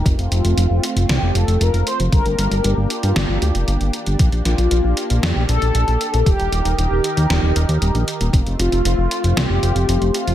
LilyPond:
<<
  \new Staff \with { instrumentName = "Analog polysynth" } { \time 4/4 \key f \mixolydian \tempo 4 = 116 r8 f'4. g'8 a'8 bes'8 c''8 | bes'4. f'2 r8 | r8 f'4. g'8 a'4. | g'4 g'2~ g'8 r8 |
r8 f'4. g'4. f'8 | }
  \new Staff \with { instrumentName = "Analog synth pad" } { \time 4/4 \key f \mixolydian << { <a f'>1 | <bes g'>1 | <bes g'>1 | <ees ees' bes'>1 |
<a f'>1 | } \\ { c'1 | d'1~ | d'1 | r1 |
c'1 | } >> }
  \new Staff \with { instrumentName = "Analog synth bass" } { \clef bass \time 4/4 \key f \mixolydian f,,16 f,,16 f,,16 f,,16 f,,16 f,,16 r16 f,,16 c,16 f,,16 f,,16 f,,16 f,,16 f,,16 r16 f,,16 | g,,16 g,,16 g,,16 g,,16 g,,16 g,,16 r16 g,16 g,,16 g,,16 d,16 f,,16 g,,16 g,,16 r16 g,,16 | bes,,16 bes,,16 bes,,16 bes,,16 bes,,16 bes,,16 r16 bes,,16 f,16 bes,,16 bes,,16 bes,,16 bes,,16 bes,,16 r16 bes,,16 | ees,,16 ees,,16 ees,,16 ees,,16 ees,,16 ees,,16 r16 ees,16 ees,,16 ees,,16 ees,,16 ees,16 ees,,16 bes,,16 r16 ees,,16 |
f,,16 f,,16 f,,16 f,,16 f,,16 f,,16 r16 f,,16 c,16 f,,16 f,,16 f,,16 f,,16 f,,16 r16 f,,16 | }
  \new DrumStaff \with { instrumentName = "Drums" } \drummode { \time 4/4 <hh bd>16 hh16 hh16 hh16 hh8 hh16 hh16 <hh sn>8 hh16 hh16 hh16 hh16 hh16 hh16 | <hh bd>16 hh16 hh16 hh16 hh8 hh16 hh16 <hh sn>8 hh16 hh16 hh16 hh16 hh16 hh16 | <hh bd>16 hh16 <hh sn>16 hh16 hh8 hh16 hh16 <hh sn>8 hh16 hh16 hh16 hh16 hh16 hh16 | <hh bd>16 hh16 hh16 hh16 hh8 hh16 hh16 <hh sn>8 hh16 hh16 hh16 hh16 hh16 hh16 |
<hh bd>16 hh16 hh16 hh16 hh8 hh16 hh16 <hh sn>8 hh16 hh16 hh16 hh16 hh16 hh16 | }
>>